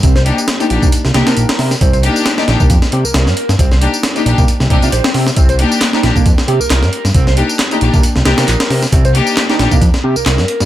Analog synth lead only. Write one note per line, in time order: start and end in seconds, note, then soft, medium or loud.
0.03 0.15 C4 medium
0.16 0.21 C5 medium
0.60 0.70 D#4 medium
0.82 0.92 A#3 medium
1.15 1.26 G4 medium
1.27 1.70 A#4 medium
1.81 1.92 C4 medium
1.93 1.98 C5 medium
2.38 2.47 D#4 medium
2.60 2.70 A#3 medium
2.93 3.04 G4 medium
3.05 3.48 A#4 medium
3.59 3.70 C4 medium
3.72 3.77 C5 medium
4.16 4.26 D#4 medium
4.38 4.48 A#3 medium
4.70 4.77 C4 medium
4.82 4.92 F4 medium
4.92 5.04 C5 medium
5.05 5.10 C4 medium
5.15 5.26 C4 medium
5.37 5.48 C4 medium
5.49 5.54 C5 medium
5.94 6.03 D#4 medium
6.16 6.25 A#3 medium
6.48 6.59 G4 medium
6.60 7.04 A#4 medium
7.15 7.26 C4 medium
7.28 7.32 C5 medium
7.72 7.81 D#4 medium
7.94 8.03 A#3 medium
8.26 8.37 G4 medium
8.38 8.82 A#4 medium
8.93 9.04 C4 medium
9.05 9.10 C5 medium
9.49 9.59 D#4 medium
9.71 9.81 A#3 medium
10.04 10.15 G4 medium
10.16 10.59 A#4 medium